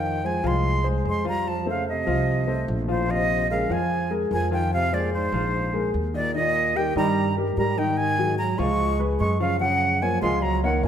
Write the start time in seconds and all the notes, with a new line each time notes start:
Already playing: F2 D#3 F3 F4 F5 G5
0.24 F3 G#3 G#4 C5 G#5
0.44 C2 F3 G#3 F4 F5 C6
0.84 G#3 G#4 C5
1.05 F2 G#3 G#4 C5
1.09 C6
1.25 F3 G3 F4 F5
1.29 A#5
1.48 F3 A5
1.66 A3 A4 C5
1.70 C#3 F5
1.89 C3 D#5
2.07 C2 F3 F4 F5
2.47 A3 A4 C5
2.68 A#1
2.88 A2 F3 F4 C5 F5
3.08 C3 F3 F4 D#5 F5
3.50 C#3 G#3 G#4 A#4 F5
3.69 F2 F3 F4 F5 G#5
4.10 G#3 G#4 A#4
4.31 F2 F3 G#3 A#4 G#5
4.51 D#3 F3 F4 F5 G5
4.73 C3 F5
4.92 A#2 G#3 G#4 C5 D5
5.13 G#2 C5
5.32 A#1 F3 F4 F5
5.73 G#3 G#4 A#4
5.94 D#2
6.14 A#2 D#3 D#4 D5 D#5
6.34 A#2 D#3 D#4 D#5
6.75 D#3 G3 G4 A#4 G5
6.96 G2 D#3 G3 D#4 D#5 A#5
7.37 G3 G4 A#4
7.57 G#2 G3 G4 A#4 A#5
7.77 D#3 D#4 D#5 G5
7.97 D#3 G#5
8.19 F#3 F#4 G#4
8.38 F#3 A#5
8.58 C#2 F3 G#3 F4 F5 C#6
8.99 G#3 G#4 B4
9.20 F#2 G#3 C#6
9.40 C#3 F3 F4 F5
9.60 C#3 F3 G#4 F#5
10.02 F3 A#3 A#4 C#5 G#5
10.22 C#2 F3 G#3 F4 F5 C6
10.42 F#3 A#5
10.63 D#3 A#3 A#4 C#5 F#5
10.83 F#2 F3 A#3 A#4 C#5